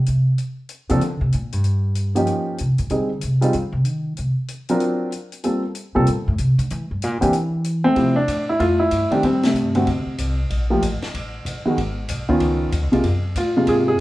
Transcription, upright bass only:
0.08 C3
0.90 C#3
1.03 D3
1.21 C3
1.34 A#2
1.53 G2
2.60 C3
2.79 A#2
2.91 D3
3.23 C3
3.54 D3
3.72 C3
3.86 D#3
4.19 C3
5.96 C3
6.08 A#2
6.28 A2
6.39 C3
6.58 D3
6.71 E3
6.91 G2
7.04 A#2
7.23 E3
7.96 C3
8.28 A2
8.60 F2
8.92 G2
9.10 muted upright bass stroke
9.23 A2
9.54 G2
9.87 D2
10.06 muted upright bass stroke
10.19 C2
10.50 A#1
10.82 A1
11.02 muted upright bass stroke
11.14 A1
11.45 A#1
11.65 muted upright bass stroke
11.78 G#1
12.09 B1
12.29 muted upright bass stroke
12.41 C#2
12.72 D#2
12.82 C#2
12.93 B1
13.04 F#2
13.35 A2
13.67 G#2

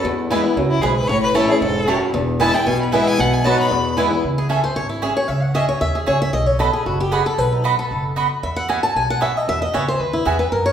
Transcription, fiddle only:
0.70 E4
0.82 G#4
0.96 B4
1.08 C#5
1.23 B4
1.35 A4
1.49 G#4
1.62 A4
2.40 A5
2.54 G5
2.67 G#5
2.81 B4
2.92 E5
3.07 G#5
3.20 F#5
3.34 G#5
3.45 A5
3.59 B5

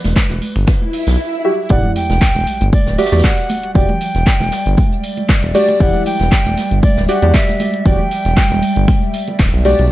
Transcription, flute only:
Already playing: B4
1.70 F#5
1.96 G5
2.73 D5
2.98 E5
3.24 F#5
3.75 G5
5.55 D5
5.80 F#5
6.06 G5
6.83 D5
7.09 F#5
7.34 E5
7.86 G5
9.65 D5

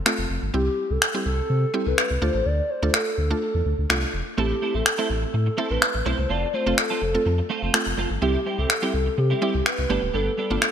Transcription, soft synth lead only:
Already playing: A4
0.54 G4
0.91 A4
1.26 A4
1.87 B4
2.22 C5
2.46 D5
2.70 C5
2.94 A4
4.38 G4
4.75 A4
5.10 A4
5.71 B4
6.06 C5
6.30 D5
6.54 C5
6.78 A4
8.22 G4
8.59 A4
8.94 A4
9.18 G4
9.66 B4
10.14 A4

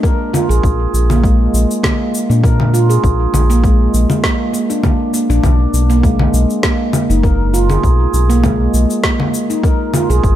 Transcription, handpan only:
0.03 A#4
0.33 F4
0.49 G#4
1.10 A#3
1.24 G#3
1.83 A#3
2.30 D4
2.44 A#4
2.74 F4
2.90 G#4
3.50 A#3
3.64 G#3
4.24 A#3
4.53 A#3
4.70 D4
4.84 A#3
5.14 A#3
5.30 D4
5.90 A#3
6.03 G#3
6.64 A#3
7.10 D#4
7.24 A#4
7.54 F4
7.70 G#4
8.30 A#3
8.44 G#3
9.04 A#3
9.50 D#4
9.64 A#4
9.94 F4
10.10 G#4

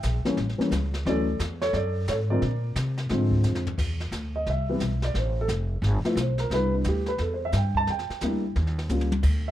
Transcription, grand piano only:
Already playing: E5 G5
0.25 E3 G3 A#3 C#4
0.58 E3 G3 A#3 C#4
1.06 E3 F#3 A3 C#4 A4 D5
1.62 A4 C#5
1.74 A4 D5
2.09 A4 C#5
2.30 D3 F3 G#3 C4 A#4 D5
3.10 D3 F3 G#3 C4
4.36 D#5
4.50 E5
4.69 C3 E3 G3 B3
5.04 D5
5.19 C5
5.41 A4
6.05 F3 A3 B3 E4
6.21 C5
6.40 A#4
6.52 G3 B3 D4 E4 B4
6.75 D4
6.88 G4
7.08 B4
7.21 A4
7.34 C5
7.45 E5
7.57 G5
7.77 A5
7.90 G5
8.23 G3 A#3 D4 E4
8.90 G3 A#3 C#4 F4

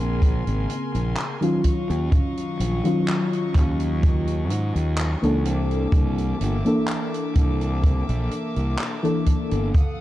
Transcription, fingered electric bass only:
Already playing: A#1
0.47 G#1
0.95 A#1
1.90 D#2
2.60 A#1
3.55 D#2
4.50 G#2
4.75 D#2
5.23 C#2
5.45 C2
5.92 C2
6.41 G1
7.36 C2
8.09 A#1
8.56 C2
9.52 G1

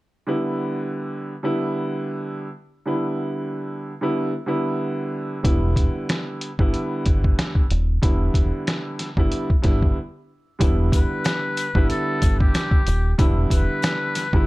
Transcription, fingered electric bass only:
5.45 E1
6.59 G1
7.07 G1
7.71 D#1
8.03 E1
8.34 E1
9.17 G1
9.65 G1
10.61 E1
11.75 G1
12.23 G1
12.87 D#1
13.19 E1
13.51 E1
14.33 G1

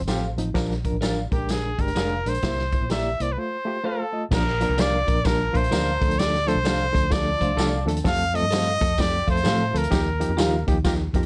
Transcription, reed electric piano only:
0.07 F3 C4 G4
0.38 F3 C4 D#4
0.54 F3 D4 A#4
0.85 F3 D4 A#4
1.01 F3 D4 A#4
1.31 G#3 C4 A#4
1.38 D4
1.79 G#3 D4 G4
1.95 G#3 D4 A#4
2.26 G#3 D4 A#4
2.44 A#3 E4 C5
2.74 A#3 E4 C5
2.91 A#3 E4 D5
3.20 A#3 E4 C5
3.37 A3 F4 C5
3.65 A3 F4 G4
3.84 A3 F4 C5
4.12 A3 F4 D#5
4.31 F3 A#3 D4 A#4
4.61 F3 A#3 D4 A#4
4.77 F3 A#3 D4 A#4
5.07 F3 A#3 D4 A#4
5.24 F3 A#3 D4 A#4
5.53 F3 A#3 D4 A#4
5.71 F3 A#3 D4 A#4
6.01 F3 A3 D4 A4
6.47 F3 A3 D4 A4
6.64 F3 A3 D4 A4
6.93 F3 A3 D4 A4
7.10 F3 A3 D4 A4
7.39 F3 A3 D4 C5
7.56 F3 A3 D4 A4
7.86 F3 A3 D4 A4
8.04 F3 A3 C4 A4
8.34 F3 A3 C4 A4
8.52 F3 A3 C4 A4
8.81 F3 A3 C4 A4
8.98 F3 A3 C4 A4
9.27 F3 A3 C4 A4
9.44 F3 A3 C4 A4
9.73 F3 A3 C4 A4
9.90 F3 A#3 D#4 G4
10.20 F3 A#3 D#4 G4
10.38 F3 A#3 D#4 F4
10.67 F3 A#3 D#4 G4
10.85 F3 A#3 D#4 G4
11.15 F3 A#3 D#4 G4

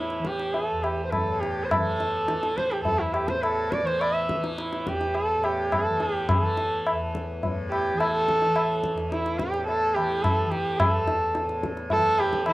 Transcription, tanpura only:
Already playing: E2 A2 E3
0.19 E3
0.71 E2
1.23 A2
1.76 E3
2.28 E3
2.80 E2
3.31 A2
3.82 E3
4.35 E3
4.86 E2
5.36 A2
5.88 E3
6.40 E3
6.91 E2
7.42 A2
7.94 E3
8.44 E3
8.93 E2
9.45 A2
9.96 E3
10.46 E3
10.96 E2
11.45 A2
11.96 E3
12.46 E3

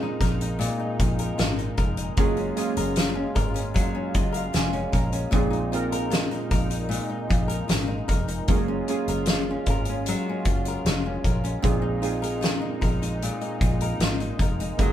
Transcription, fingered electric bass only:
0.20 A#1
1.00 A#1
1.39 G#1
1.78 F1
2.18 F#1
2.77 F#1
3.36 G#1
4.15 F#1
4.54 F1
4.93 A#1
5.33 A#1
6.51 A#1
7.30 A#1
7.69 G#1
8.09 F1
8.49 F#1
9.08 F#1
9.66 G#1
10.45 F#1
10.85 F1
11.24 A#1
11.64 A#1
12.82 A#1
13.61 A#1
14.00 G#1
14.39 F1
14.79 F#1

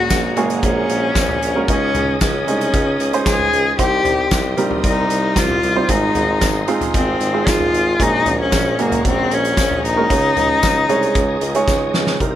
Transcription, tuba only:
0.11 A#1
0.37 F#1
0.63 A#1
0.89 A#1
1.15 A#1
1.42 A#1
1.68 C#2
1.94 C#2
2.21 C#2
2.47 C2
2.74 C#2
3.00 C#2
3.26 C#2
3.52 C#2
3.79 C2
4.04 C2
4.32 C2
4.57 A#1
4.84 C2
5.10 C2
5.36 C2
5.63 C2
5.89 G#1
6.15 G#1
6.42 G#1
6.94 G#1
7.21 G#1
7.47 G#1
7.73 G#1
8.00 A#1
8.26 A#1
8.53 A#1
8.79 F#1
9.05 A#1
9.31 A#1
9.58 A#1
9.84 A#1
10.10 C#2
10.36 C#2
10.63 C#2
10.89 C2
11.15 C#2
11.41 C#2
11.68 C#2
11.94 C#2
12.21 C2

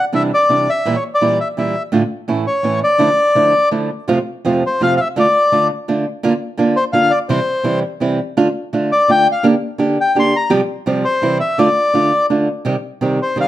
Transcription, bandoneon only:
0.15 E5
0.34 D5
0.70 E5
0.96 C#5
1.15 D5
1.40 E5
1.58 E5
2.47 C#5
2.84 D5
4.67 C5
4.83 F5
4.97 E5 F5
5.19 D5
6.76 C5
6.93 F5
7.10 D5
7.29 C5
8.92 D5
9.11 G5
9.32 F5
10.01 G5
10.19 C6
10.36 A#5
11.05 C5
11.40 E5
11.59 D5
13.22 C5
13.41 F5

